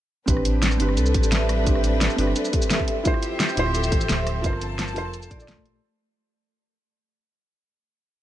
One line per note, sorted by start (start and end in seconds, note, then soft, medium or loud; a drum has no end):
0.26 0.79 A1 loud
0.26 3.02 G3 medium
0.26 0.76 C4 medium
0.26 3.02 C4 medium
0.26 0.77 D4 medium
0.26 3.02 D4 medium
0.26 0.78 G4 medium
0.26 3.02 B4 medium
0.26 0.79 B4 medium
0.26 kick loud
0.26 closed hi-hat medium
0.26 shaker medium
0.37 cross-stick soft
0.45 closed hi-hat loud
0.45 shaker soft
0.63 snare loud
0.63 closed hi-hat medium
0.63 shaker soft
0.71 cross-stick soft
0.71 shaker soft
0.78 0.99 G1 medium
0.78 1.63 C4 medium
0.78 1.64 D4 medium
0.78 1.65 G4 medium
0.78 closed hi-hat loud
0.82 1.66 B4 loud
0.89 cross-stick soft
0.97 1.16 C2 loud
0.97 1.14 A4 medium
0.97 closed hi-hat medium
0.97 shaker soft
1.06 shaker medium
1.14 2.09 A1 medium
1.14 1.30 G4 medium
1.14 kick loud
1.14 closed hi-hat loud
1.14 shaker soft
1.23 shaker medium
1.32 1.48 E5 loud
1.32 snare loud
1.32 closed hi-hat medium
1.32 shaker soft
1.49 cross-stick medium
1.49 closed hi-hat medium
1.65 2.15 C4 medium
1.65 2.16 D4 medium
1.65 2.17 G4 medium
1.65 kick loud
1.65 closed hi-hat medium
1.65 shaker soft
1.69 2.18 B4 medium
1.75 cross-stick soft
1.84 closed hi-hat medium
1.84 shaker soft
2.01 snare loud
2.01 closed hi-hat medium
2.01 shaker soft
2.10 cross-stick soft
2.10 shaker soft
2.16 2.34 G1 medium
2.16 3.02 C4 medium
2.16 3.03 D4 medium
2.16 3.03 G4 medium
2.16 open hi-hat medium
2.20 3.04 B4 loud
2.27 cross-stick soft
2.36 2.52 A4 medium
2.36 closed hi-hat medium
2.36 shaker soft
2.45 shaker medium
2.53 2.69 G4 medium
2.53 kick loud
2.53 closed hi-hat loud
2.53 shaker soft
2.62 shaker medium
2.70 2.86 E5 loud
2.70 snare loud
2.70 closed hi-hat medium
2.70 shaker soft
2.80 kick medium
2.88 closed hi-hat medium
3.03 5.80 F3 medium
3.03 5.80 C4 medium
3.03 3.54 E4 medium
3.03 3.55 F4 medium
3.03 4.43 G4 medium
3.03 3.56 G4 medium
3.03 3.56 C5 medium
3.03 4.43 E5 medium
3.03 kick loud
3.03 closed hi-hat medium
3.03 shaker soft
3.14 cross-stick soft
3.23 closed hi-hat medium
3.23 shaker soft
3.40 snare loud
3.40 closed hi-hat medium
3.40 shaker soft
3.49 cross-stick soft
3.49 shaker soft
3.55 3.94 D1 medium
3.55 4.41 E4 medium
3.55 4.40 F4 medium
3.55 4.42 G4 medium
3.55 4.43 C5 loud
3.55 closed hi-hat loud
3.66 cross-stick soft
3.75 3.91 A4 medium
3.75 closed hi-hat medium
3.75 shaker soft
3.83 shaker medium
3.92 4.08 A1 medium
3.92 4.08 G4 medium
3.92 kick loud
3.92 closed hi-hat medium
3.92 shaker soft
4.01 shaker medium
4.09 4.46 D1 loud
4.09 4.25 E5 loud
4.09 snare loud
4.09 closed hi-hat medium
4.09 shaker soft
4.27 cross-stick medium
4.27 closed hi-hat medium
4.42 4.95 G1 loud
4.42 5.81 A#3 medium
4.42 4.92 F4 medium
4.42 4.94 A4 medium
4.42 4.94 A#4 medium
4.42 4.95 C5 medium
4.42 5.81 A5 medium
4.42 kick loud
4.42 closed hi-hat medium
4.42 shaker soft
4.53 cross-stick soft
4.61 closed hi-hat medium
4.61 shaker soft
4.79 snare loud
4.79 closed hi-hat medium
4.79 shaker soft
4.88 cross-stick soft
4.88 shaker soft
4.94 5.32 F1 medium
4.94 5.36 F4 medium
4.94 5.37 A4 medium
4.94 5.38 A#4 medium
4.94 open hi-hat medium
4.98 5.39 C5 loud
5.05 cross-stick soft
5.13 5.30 A4 medium
5.13 closed hi-hat medium
5.13 shaker soft
5.22 shaker medium
5.31 5.81 A#1 medium
5.31 5.46 D5 loud
5.31 kick loud
5.31 closed hi-hat medium
5.31 shaker soft
5.38 5.80 F4 medium
5.38 5.80 A4 medium
5.38 shaker medium
5.42 5.82 D5 loud
5.48 5.58 A3 loud
5.48 snare loud
5.48 closed hi-hat medium
5.48 shaker soft
5.57 kick medium
5.65 5.81 G4 medium
5.65 closed hi-hat medium